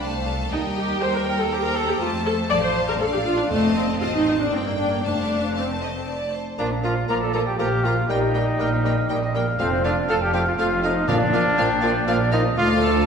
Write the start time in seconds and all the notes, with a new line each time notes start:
Already playing: D4
0.02 C2 A3 C5 F5 A5
0.27 A4
0.51 D#2 G3 D#4 A#4 D#5 G5
0.77 G4
1.01 G3 C5 G5
1.14 A#4
1.26 A#4
1.39 A4
1.51 A#3 G4 C5 G5 A#5
1.64 A#4
1.76 A4
1.88 G4
2.00 F2 A3 F4 C5 A5
2.25 A4
2.50 A1 F3 D5 F5 A5
2.63 C5
2.74 C5
2.88 A#4
2.99 A#1 D4 A4 D5 F5
3.13 G4
3.25 F4
3.37 D4
3.50 F1 F2 A3 C4 D#5 F5 A5
3.76 C4
4.01 A1 F4 D#5 F5 A5
4.15 D#4
4.27 D#4 D#5
4.40 D4
4.52 G1 A#3 C4 D5 G5
4.66 A#3
4.78 D4
4.91 A#3
5.04 F1 A3 D4 C5 F5 A5
5.55 C4 F5 A5
5.82 D#5
6.08 D5
6.34 C5
6.58 A#1 A#2 F3 A#3 D4 F4 A#4 D5 A#5
6.83 F3 A#3 F4 A#4 F5 A#5
7.08 A#1 A#2 F3 A#3 F4 A#4 D5 A#5
7.21 A4 A5
7.34 F3 A#3 F4 A4 A#4 A5 A#5
7.46 G4 G5
7.58 A#1 A#2 F3 A#3 F4 G4 A#4 F5 G5 A#5
7.84 F3 A#3 F4 A#4 F5 A#5
8.09 A#1 A#2 G3 A#3 D#4 G4 A#4 D#5 G5
8.34 G3 A#3 D#4 A#4 G5
8.59 A#1 A#2 G3 A#3 D#4 A#4 F5 G5
8.84 G3 A#3 D#4 A#4 G5
9.09 A#1 A#2 G3 A#3 D#4 A#4 D#5 G5
9.34 G3 A#3 D#4 A#4 F5 G5
9.59 F1 F2 F3 A3 C4 F4 A4 C5 F5
9.84 F3 A3 D4 F4 A4 D5 F5
10.09 F1 F2 F3 A3 F4 A4 F5 A5
10.22 G4 G5
10.33 F3 A3 F4 G4 A4 F5 G5
10.46 F4 F5
10.58 F1 F2 F3 A3 F4 A4 F5
10.83 F3 A3 D#4 F4 A4 D#5 F5
11.08 A#1 A#2 F3 A#3 D4 F4 A#4 D5 F5
11.32 F3 A#3 F4 A#4 F5
11.57 A#1 A#2 F3 A#3 F4 A#4 F5 G5
11.82 F3 A#3 F4 A#4 F5
12.07 A#1 A#2 F3 A#3 F4 A#4 F5
12.32 F3 A#3 D#4 F4 A#4 D#5 F5
12.57 D2 F3 A3 F4 A4 D5 F5
12.82 A4 A5